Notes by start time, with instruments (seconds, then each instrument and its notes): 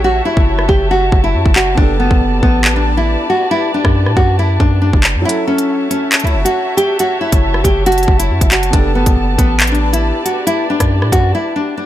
Already playing: 808-style bass A1, grand piano F#3 C#4 E4 A4, string section F#4 C#5 E5 A5
0.04 nylon-string guitar F#4
0.25 nylon-string guitar E4
0.37 808-style bass F#1, kick
0.59 cross-stick
0.69 808-style bass F#1, nylon-string guitar G4, kick
0.91 nylon-string guitar F#4
1.12 808-style bass F#1, kick
1.24 nylon-string guitar E4
1.34 808-style bass F#2
1.46 808-style bass F#1, kick
1.56 nylon-string guitar F#4, clap
1.75 808-style bass F#1, grand piano B3 G4, nylon-string guitar D4, string section G4 B4 D5, kick
1.82 grand piano A4
2.00 nylon-string guitar B3
2.11 808-style bass F#1, kick
2.21 808-style bass F#1
2.43 808-style bass A1, nylon-string guitar B3, kick
2.64 clap
2.76 nylon-string guitar D4
2.97 nylon-string guitar E4
3.30 nylon-string guitar F#4
3.51 nylon-string guitar E4
3.74 nylon-string guitar D4
3.85 808-style bass F#2, kick, cross-stick
4.06 808-style bass A2, cross-stick
4.17 808-style bass F#2, nylon-string guitar F#4, kick
4.39 nylon-string guitar E4
4.60 808-style bass F#2, nylon-string guitar D4, kick
4.82 nylon-string guitar D4
4.93 808-style bass F#1, kick
5.04 clap
5.15 808-style bass F#2
5.22 grand piano F#3 C#4, nylon-string guitar E4, string section F#4 C#5 E5 A5
5.27 grand piano E4 A4, closed hi-hat
5.47 nylon-string guitar C#4
5.58 closed hi-hat
5.91 nylon-string guitar C#4, closed hi-hat
6.12 clap, closed hi-hat
6.20 closed hi-hat
6.24 808-style bass C#2, nylon-string guitar E4, closed hi-hat
6.34 808-style bass F#1
6.45 nylon-string guitar F#4, closed hi-hat
6.77 nylon-string guitar G4, closed hi-hat
6.99 nylon-string guitar F#4, closed hi-hat
7.21 nylon-string guitar E4
7.32 808-style bass F#1, kick, closed hi-hat
7.54 cross-stick
7.64 808-style bass F#1, nylon-string guitar G4, kick, closed hi-hat
7.86 nylon-string guitar F#4, closed hi-hat
7.92 closed hi-hat
7.98 closed hi-hat
8.03 closed hi-hat
8.08 808-style bass F#1, kick
8.19 nylon-string guitar E4, closed hi-hat
8.30 808-style bass F#2
8.41 808-style bass F#1, kick, closed hi-hat
8.51 nylon-string guitar F#4, clap, closed hi-hat
8.63 closed hi-hat
8.70 808-style bass F#1, grand piano B3 G4, nylon-string guitar D4, string section G4 B4 D5, kick, closed hi-hat
8.78 grand piano A4
8.95 nylon-string guitar B3
9.06 808-style bass F#1, kick, closed hi-hat
9.17 808-style bass F#1
9.38 808-style bass A1, nylon-string guitar B3, kick, closed hi-hat
9.60 clap, closed hi-hat
9.67 closed hi-hat
9.72 nylon-string guitar D4, closed hi-hat
9.93 nylon-string guitar E4, closed hi-hat
10.25 nylon-string guitar F#4, closed hi-hat
10.47 nylon-string guitar E4, closed hi-hat
10.70 nylon-string guitar D4
10.80 808-style bass F#2, kick, cross-stick, closed hi-hat
11.02 808-style bass A2, cross-stick
11.12 808-style bass F#2, nylon-string guitar F#4, kick, closed hi-hat
11.35 nylon-string guitar E4
11.56 nylon-string guitar D4
11.77 nylon-string guitar D4